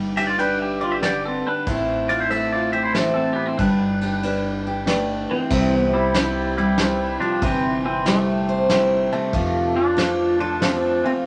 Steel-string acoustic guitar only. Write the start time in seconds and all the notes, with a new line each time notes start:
Already playing: G3
0.18 G4
0.39 D4 B4
0.81 B4
1.04 D3 B4
1.67 A2 A3 C4 E4 C5
2.10 C4
2.31 A3 E4
2.73 C5
2.95 E3 E4
3.59 G3
4.03 G4
4.24 D4 G4
4.67 G4
4.88 A3
5.51 C3 G3 E4 G4 C5
6.15 G3
6.58 G3
6.79 G3
7.22 G4
7.42 C3 G4
8.06 G3
8.49 C5
8.70 G3 E4
9.13 G4
9.34 F3 F4
9.97 A3
10.41 A4
10.62 A3 C4
11.06 F4